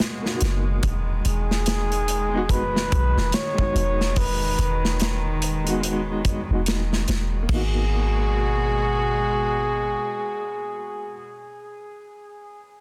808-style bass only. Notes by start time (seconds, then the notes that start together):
0.41 F#1
0.84 E1
1.25 E1
2.92 B1
3.17 E1
3.75 E1
4.58 E1
6.50 E1
7.08 E1
7.49 G#1